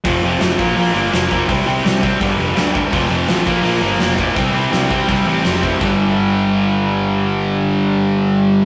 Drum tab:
HH |o-o-o-o-|o-o-o-o-|o-o-o-o-|o-o-o-o-|
SD |--o---o-|--o---o-|--o---o-|--o---o-|
BD |o--o---o|o--oo--o|o--o---o|o--oo--o|

HH |--------|--------|
SD |--------|--------|
BD |o-------|--------|